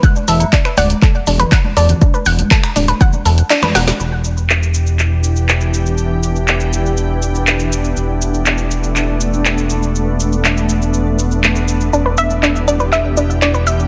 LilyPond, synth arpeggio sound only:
\new Staff \with { instrumentName = "Synth arpeggio sound" } { \time 4/4 \key e \minor \tempo 4 = 121 fis''16 r16 a'16 r16 d'16 b'16 fis''16 r16 a'16 r16 d'16 b'16 fis''16 r16 a'16 r16 | d'16 b'16 fis''16 r16 a'16 r16 d'16 b'16 fis''16 r16 a'16 r16 d'16 b'16 fis''16 r16 | r1 | r1 |
r1 | r1 | d'16 b'16 e''16 r16 d'16 r16 d'16 b'16 e''16 r16 d'16 r16 d'16 b'16 e''16 r16 | }